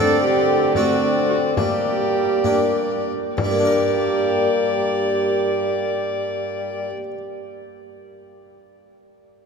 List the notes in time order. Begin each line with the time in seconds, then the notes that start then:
Already playing: D3 A3 C4 A4 D5
0.00 D4
0.23 G4
0.75 A3 C4 D4 F#4 D5, frame drum
1.29 F#4
1.56 G3 A#3 G4 D5, frame drum
2.44 A#3 D4, frame drum
3.37 G2 G3 A#3 G4 D5, frame drum
3.44 G3
3.51 A#3
3.58 D4
3.65 A#4